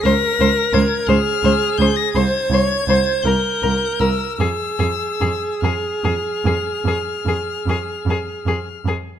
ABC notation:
X:1
M:12/8
L:1/16
Q:3/8=52
K:Fm
V:1 name="Violin"
b'4 a'2 f'4 g' b' a'6 g'4 =e'2 | =e'6 f'16 z2 |]
V:2 name="Viola"
B6 A6 c2 d2 c2 B6 | A16- A4- A z3 |]
V:3 name="Violin"
c2 c2 c2 c2 c2 c2 c2 c2 c2 B2 B2 B2 | A2 A2 A2 A2 A2 A2 A2 A2 A2 A2 A2 A2 |]
V:4 name="Cello" clef=bass
D,,2 D,,2 D,,2 D,,2 D,,2 D,,2 C,,2 C,,2 C,,2 C,,2 C,,2 C,,2 | F,,2 F,,2 F,,2 F,,2 F,,2 F,,2 F,,2 F,,2 F,,2 F,,2 F,,2 F,,2 |]